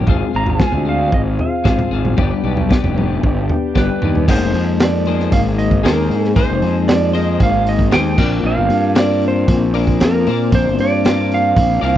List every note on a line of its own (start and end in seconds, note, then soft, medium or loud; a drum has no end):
0.00 2.14 F4 medium
0.07 0.20 G#1 loud
0.07 0.59 G#3 medium
0.07 0.35 C4 medium
0.07 0.34 F4 loud
0.07 2.16 G#4 medium
0.07 0.32 G#4 medium
0.07 2.17 C5 medium
0.07 2.16 F5 medium
0.07 kick loud
0.07 floor tom medium
0.33 0.59 G#1 medium
0.33 0.60 C4 medium
0.33 0.60 F4 medium
0.33 0.61 G#4 medium
0.33 0.49 A#5 medium
0.46 0.89 G#5 medium
0.46 floor tom medium
0.60 1.13 G#3 medium
0.60 0.86 C4 medium
0.60 0.85 F4 medium
0.60 0.84 G#4 medium
0.60 kick loud
0.60 snare medium
0.72 1.11 D2 medium
0.72 floor tom medium
0.85 1.64 C4 medium
0.85 1.65 F4 medium
0.85 1.66 G#4 medium
0.85 1.15 F5 medium
1.12 1.38 G#1 loud
1.12 1.21 D#5 medium
1.12 kick loud
1.39 1.89 F5 medium
1.39 floor tom medium
1.64 1.78 G#1 loud
1.64 2.16 G#3 medium
1.64 1.93 C4 medium
1.64 1.92 F4 medium
1.64 1.90 G#4 medium
1.64 kick loud
1.64 snare medium
1.79 floor tom medium
1.79 mid tom medium
1.91 2.16 G#1 medium
1.91 2.17 C4 medium
1.91 2.17 F4 medium
1.91 2.16 G#4 medium
2.05 mid tom medium
2.16 2.31 G1 loud
2.16 2.68 G3 loud
2.16 2.45 B3 medium
2.16 2.44 D4 medium
2.16 4.25 G4 medium
2.16 2.42 G4 loud
2.16 4.25 B4 medium
2.16 4.25 D5 medium
2.16 4.25 G5 medium
2.16 kick loud
2.16 floor tom medium
2.43 2.69 B1 loud
2.43 2.69 B3 medium
2.43 2.70 D4 medium
2.43 2.71 G4 medium
2.57 floor tom medium
2.69 3.23 G3 medium
2.69 2.97 B3 medium
2.69 2.97 D4 medium
2.69 2.94 G4 loud
2.69 kick loud
2.69 snare medium
2.84 3.21 F1 medium
2.84 floor tom medium
2.96 3.75 B3 medium
2.96 3.76 D4 medium
2.96 3.76 G4 medium
2.96 mid tom medium
3.23 3.48 G1 loud
3.23 kick loud
3.49 floor tom medium
3.75 3.88 G1 loud
3.75 4.26 G3 medium
3.75 4.04 B3 medium
3.75 4.02 D4 medium
3.75 4.01 G4 medium
3.75 4.30 B4 medium
3.75 kick loud
3.75 snare medium
4.02 4.27 D#2 medium
4.02 4.28 B3 medium
4.02 4.27 D4 medium
4.02 4.27 G4 medium
4.02 mid tom medium
4.15 floor tom medium
4.27 4.40 G#1 medium
4.27 5.09 G#3 medium
4.27 5.08 A#3 medium
4.27 8.15 C4 medium
4.27 8.15 D#4 medium
4.27 5.08 D#4 medium
4.27 8.14 G#4 medium
4.27 5.07 G#4 loud
4.27 6.35 A#4 medium
4.27 4.83 C5 medium
4.27 5.06 C5 medium
4.27 kick loud
4.27 crash loud
4.40 4.53 F1 medium
4.53 5.28 F2 medium
4.53 open hi-hat medium
4.80 5.36 D5 medium
4.80 snare loud
4.80 open hi-hat medium
5.05 5.82 G#3 medium
5.05 5.84 A#3 medium
5.05 5.84 D#4 medium
5.05 5.84 G#4 medium
5.05 5.85 C5 medium
5.05 open hi-hat medium
5.20 snare soft
5.32 5.86 G#1 loud
5.32 5.40 F5 loud
5.32 kick loud
5.32 open hi-hat medium
5.58 5.85 D#5 medium
5.58 open hi-hat medium
5.71 kick medium
5.83 6.09 D#2 loud
5.83 6.35 G#3 medium
5.83 6.36 A#3 medium
5.83 6.35 D#4 loud
5.83 6.36 G#4 medium
5.83 6.36 A#4 medium
5.83 6.38 C5 medium
5.83 snare loud
5.83 open hi-hat loud
6.10 6.35 G#2 medium
6.10 open hi-hat medium
6.24 snare soft
6.34 6.49 G#1 loud
6.34 7.13 G#3 loud
6.34 7.16 A#3 medium
6.34 7.13 D#4 medium
6.34 8.15 C5 medium
6.34 6.90 C5 medium
6.34 kick loud
6.34 open hi-hat medium
6.38 7.14 G#4 loud
6.38 7.13 C5 loud
6.49 6.61 F1 medium
6.62 7.36 F2 medium
6.62 open hi-hat medium
6.88 7.13 D5 loud
6.88 snare loud
6.88 open hi-hat medium
7.14 7.90 G#3 medium
7.14 7.92 A#3 medium
7.14 7.92 D#4 medium
7.14 7.91 G#4 medium
7.14 7.94 C5 medium
7.14 7.42 D#5 medium
7.14 open hi-hat medium
7.40 7.93 G#1 loud
7.40 7.69 F5 loud
7.40 kick loud
7.40 open hi-hat medium
7.67 7.95 D#5 loud
7.67 open hi-hat medium
7.79 kick medium
7.91 8.17 D#2 loud
7.91 8.17 G#3 medium
7.91 8.17 A#3 medium
7.91 8.18 D#4 medium
7.91 8.18 G#4 medium
7.91 8.20 C5 medium
7.91 8.46 G5 loud
7.91 snare loud
7.91 open hi-hat medium
8.16 8.43 A#1 medium
8.16 8.95 A#3 loud
8.16 11.98 C4 medium
8.16 8.95 C4 medium
8.16 11.98 D4 medium
8.16 11.98 F4 medium
8.16 8.97 F4 loud
8.16 10.23 A#4 medium
8.16 8.96 A#4 loud
8.16 8.98 D5 loud
8.16 kick loud
8.16 crash loud
8.43 8.56 A#1 medium
8.43 8.99 F5 loud
8.57 8.69 G1 medium
8.70 9.44 G2 medium
8.70 open hi-hat medium
8.95 9.77 A#3 medium
8.95 9.77 C4 medium
8.95 9.73 F4 medium
8.95 9.75 A#4 medium
8.95 9.73 D5 medium
8.95 9.25 D5 loud
8.95 snare loud
8.95 open hi-hat medium
9.22 open hi-hat medium
9.28 10.03 C5 loud
9.48 10.03 A#1 loud
9.48 kick loud
9.48 open hi-hat medium
9.74 10.26 A#3 medium
9.74 10.27 C4 medium
9.74 10.25 F4 medium
9.74 10.29 A#4 medium
9.74 10.25 D5 medium
9.74 open hi-hat medium
9.87 kick medium
10.00 10.26 F2 medium
10.00 10.56 A#4 medium
10.00 snare loud
10.00 open hi-hat medium
10.25 10.51 A#2 medium
10.25 11.04 A#3 loud
10.25 11.05 C4 loud
10.25 11.98 C5 medium
10.25 open hi-hat medium
10.29 11.04 F4 medium
10.29 11.06 A#4 loud
10.29 11.04 D5 loud
10.52 10.65 A#1 loud
10.52 10.78 C5 loud
10.52 kick loud
10.52 open hi-hat medium
10.65 10.78 G1 medium
10.78 11.53 G2 medium
10.78 11.33 D5 loud
10.78 open hi-hat medium
11.05 11.84 A#3 medium
11.05 11.83 C4 medium
11.05 11.82 F4 medium
11.05 11.82 A#4 medium
11.05 11.80 D5 medium
11.05 snare loud
11.05 open hi-hat medium
11.32 11.84 F5 loud
11.32 open hi-hat medium
11.56 11.82 A#1 loud
11.56 kick loud
11.56 open hi-hat medium
11.81 11.98 C2 medium
11.81 11.98 A#3 medium
11.81 11.98 C4 medium
11.81 11.98 F4 medium
11.81 11.98 A#4 medium
11.81 11.98 D5 medium
11.81 11.98 F5 medium
11.81 open hi-hat medium